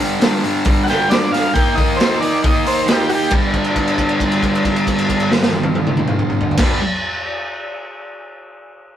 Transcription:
0.00 0.18 G2 medium
0.00 0.21 D3 medium
0.00 0.24 G3 medium
0.20 0.44 G2 medium
0.20 0.43 D3 medium
0.20 snare loud
0.20 open hi-hat medium
0.24 0.42 G3 medium
0.42 0.64 G2 medium
0.42 0.67 D3 medium
0.42 0.69 G3 medium
0.42 open hi-hat medium
0.65 1.08 G2 medium
0.65 0.90 D3 medium
0.65 kick loud
0.65 open hi-hat medium
0.69 0.87 G3 medium
0.84 1.13 G3 medium
0.84 0.87 F#5 medium
0.88 1.11 D3 medium
0.88 1.10 G5 medium
0.88 snare soft
0.88 open hi-hat medium
1.09 1.53 G2 medium
1.09 1.34 D3 loud
1.09 1.32 G3 loud
1.09 1.32 D5 medium
1.09 snare loud
1.09 open hi-hat medium
1.32 1.53 D3 soft
1.32 1.54 G3 medium
1.32 1.54 F5 medium
1.32 snare soft
1.32 open hi-hat medium
1.53 1.97 D#3 medium
1.53 1.77 A#3 medium
1.53 1.73 D#4 loud
1.53 1.76 G5 medium
1.53 kick medium
1.53 open hi-hat medium
1.75 1.99 A#3 medium
1.75 2.01 D#4 medium
1.75 1.97 D#5 medium
1.75 kick medium
1.75 open hi-hat medium
1.96 2.22 D#3 medium
1.96 2.21 A#3 medium
1.96 2.19 C5 medium
1.96 open hi-hat medium
2.01 2.19 D#4 medium
2.01 snare loud
2.20 2.42 D#3 medium
2.20 2.44 A#3 medium
2.20 2.46 D#4 medium
2.20 2.42 D5 medium
2.20 open hi-hat medium
2.43 2.85 D#3 medium
2.43 2.68 A#3 medium
2.43 2.65 D#4 medium
2.43 2.66 D#5 medium
2.43 kick loud
2.43 open hi-hat medium
2.66 2.87 A#3 medium
2.66 2.89 D#4 medium
2.66 2.88 C5 medium
2.66 open hi-hat medium
2.86 3.30 D#3 medium
2.86 3.12 A#3 loud
2.86 3.09 D#4 medium
2.86 snare loud
2.86 open hi-hat medium
2.92 3.11 G4 medium
3.09 3.30 D#4 medium
3.09 3.11 F#4 medium
3.09 open hi-hat medium
3.13 3.32 A#3 medium
3.13 3.34 G4 medium
3.31 6.58 G2 medium
3.31 6.60 D3 medium
3.31 kick medium
3.31 crash medium
3.35 6.63 G3 loud
3.54 kick medium
3.54 crash soft
3.64 crash soft
3.76 kick medium
3.76 crash soft
3.88 crash soft
3.98 kick medium
3.98 crash soft
4.09 crash soft
4.20 kick medium
4.20 crash soft
4.32 crash soft
4.43 kick medium
4.43 crash soft
4.55 crash soft
4.65 kick medium
4.65 crash soft
4.76 crash soft
4.87 kick medium
4.87 crash soft
4.98 crash soft
5.09 kick soft
5.09 crash soft
5.20 crash medium
5.32 snare medium
5.43 snare medium
5.53 high tom medium
5.63 high tom loud
5.75 high tom loud
5.87 mid tom medium
5.97 mid tom medium
6.08 mid tom loud
6.19 mid tom medium
6.30 mid tom medium
6.41 floor tom medium
6.51 floor tom medium
6.57 6.79 G2 medium
6.57 6.80 D3 medium
6.57 kick loud
6.57 snare medium
6.57 crash loud
6.63 6.82 G3 loud

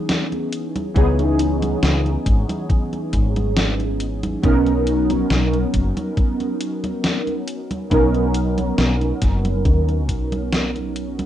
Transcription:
0.09 snare loud
0.09 closed hi-hat medium
0.09 high conga soft
0.32 closed hi-hat soft
0.32 high conga soft
0.53 closed hi-hat loud
0.76 closed hi-hat medium
0.76 high conga medium
0.94 1.74 C#2 loud
0.94 3.07 E3 medium
0.94 3.08 B3 medium
0.94 3.08 C#4 medium
0.94 3.09 D#4 medium
0.94 3.09 G#4 medium
0.94 kick loud
0.94 closed hi-hat medium
0.94 high conga soft
1.19 closed hi-hat soft
1.19 high conga soft
1.39 closed hi-hat loud
1.62 closed hi-hat medium
1.62 high conga medium
1.83 2.16 C#2 loud
1.83 snare loud
1.83 closed hi-hat medium
1.83 high conga soft
2.06 closed hi-hat soft
2.06 high conga soft
2.26 2.43 G#1 loud
2.26 kick loud
2.26 closed hi-hat loud
2.49 closed hi-hat medium
2.49 high conga medium
2.70 kick loud
2.70 closed hi-hat medium
2.70 high conga soft
2.93 closed hi-hat soft
2.93 high conga soft
3.13 4.35 G#1 loud
3.13 kick medium
3.13 closed hi-hat medium
3.36 closed hi-hat medium
3.36 high conga medium
3.56 snare loud
3.56 closed hi-hat medium
3.56 high conga soft
3.80 closed hi-hat soft
3.80 high conga soft
4.00 closed hi-hat loud
4.23 closed hi-hat medium
4.23 high conga medium
4.42 5.22 B1 loud
4.42 6.55 F#3 medium
4.42 6.56 B3 medium
4.42 6.56 C#4 medium
4.42 6.57 D#4 medium
4.42 6.57 A#4 medium
4.42 kick loud
4.42 closed hi-hat medium
4.42 high conga soft
4.66 closed hi-hat soft
4.66 high conga soft
4.87 closed hi-hat medium
5.10 closed hi-hat medium
5.10 high conga medium
5.30 5.63 B1 loud
5.30 snare loud
5.30 closed hi-hat medium
5.30 high conga soft
5.53 closed hi-hat soft
5.53 high conga soft
5.74 5.91 F#1 medium
5.74 kick medium
5.74 closed hi-hat medium
5.97 closed hi-hat medium
5.97 high conga medium
6.17 kick loud
6.17 closed hi-hat medium
6.17 high conga soft
6.40 closed hi-hat soft
6.40 high conga soft
6.61 closed hi-hat loud
6.84 closed hi-hat medium
6.84 high conga medium
7.04 snare loud
7.04 closed hi-hat medium
7.04 high conga soft
7.27 closed hi-hat soft
7.27 high conga soft
7.48 closed hi-hat loud
7.71 closed hi-hat medium
7.71 high conga medium
7.90 8.70 B1 loud
7.90 10.03 F#3 medium
7.90 10.04 B3 medium
7.90 10.04 C#4 medium
7.90 10.04 D#4 medium
7.90 10.05 A#4 medium
7.90 kick loud
7.90 closed hi-hat medium
7.90 high conga soft
8.14 closed hi-hat soft
8.14 high conga soft
8.34 closed hi-hat medium
8.58 closed hi-hat medium
8.58 high conga medium
8.78 9.11 B1 loud
8.78 snare loud
8.78 closed hi-hat soft
8.78 high conga soft
9.01 closed hi-hat soft
9.01 high conga soft
9.22 9.67 F#1 medium
9.22 kick loud
9.22 snare soft
9.22 closed hi-hat medium
9.45 closed hi-hat medium
9.45 high conga medium
9.65 10.09 D#2 medium
9.65 kick loud
9.65 closed hi-hat soft
9.65 high conga soft
9.89 closed hi-hat soft
9.89 high conga soft
10.09 11.26 B1 loud
10.09 kick medium
10.09 closed hi-hat medium
10.32 closed hi-hat soft
10.32 high conga medium
10.52 snare loud
10.52 closed hi-hat medium
10.52 high conga soft
10.76 closed hi-hat soft
10.76 high conga soft
10.96 closed hi-hat medium
11.19 closed hi-hat medium
11.19 high conga medium

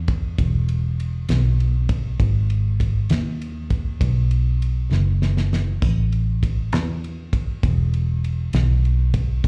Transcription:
0.00 0.35 E2 loud
0.08 kick medium
0.08 ride medium
0.38 1.25 E1 loud
0.38 kick loud
0.38 ride medium
0.69 ride soft
1.00 ride medium
1.29 2.16 B1 loud
1.29 snare loud
1.29 ride medium
1.60 ride soft
1.89 kick medium
1.89 ride medium
2.20 3.06 G#1 loud
2.20 kick loud
2.20 ride medium
2.50 ride soft
2.80 kick medium
2.80 ride medium
3.10 3.97 D#2 medium
3.10 snare loud
3.10 ride medium
3.42 ride soft
3.70 kick medium
3.70 ride medium
4.01 4.87 B1 loud
4.01 kick loud
4.01 ride medium
4.31 ride soft
4.62 ride soft
4.91 5.78 F#1 medium
4.91 snare medium
5.22 snare medium
5.37 snare medium
5.53 snare medium
5.82 6.73 A1 medium
5.82 kick loud
5.82 splash medium
6.12 ride soft
6.43 kick medium
6.43 ride medium
6.72 7.59 E2 medium
6.72 snare loud
6.72 ride medium
7.04 ride soft
7.33 kick medium
7.33 ride medium
7.63 8.50 E1 loud
7.63 kick loud
7.63 ride medium
7.94 ride soft
8.24 ride medium
8.53 9.40 B1 loud
8.53 snare loud
8.53 ride medium
8.85 ride soft
9.14 kick loud
9.14 ride medium
9.44 9.48 G#1 loud
9.44 kick loud
9.44 ride medium

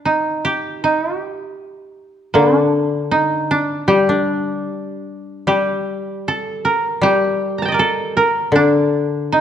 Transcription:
0.00 0.11 D4 soft
0.05 0.84 D#4 medium
0.45 0.83 G4 medium
0.84 1.20 D#4 medium
1.20 2.88 G4 medium
2.34 4.67 D3 soft
2.34 2.58 A#3 medium
2.58 3.17 D4 medium
3.11 3.57 D#4 medium
3.51 5.93 D4 medium
3.88 5.46 G3 soft
3.88 5.47 G4 medium
4.09 5.68 D4 soft
5.47 7.00 G3 soft
5.47 7.03 G4 medium
6.28 6.71 A4 medium
6.65 7.68 A#4 medium
7.01 9.31 G3 soft
7.01 9.07 G4 medium
7.58 7.80 A5 soft
7.58 7.85 A#5 soft
7.65 8.61 D#5 soft
7.65 9.00 G5 soft
7.72 8.16 A#4 soft
7.72 9.32 D5 soft
7.79 8.23 A4 medium
8.17 9.41 A#4 medium
8.52 9.41 D3 soft
8.52 9.38 D4 medium
9.32 9.41 D#4 medium

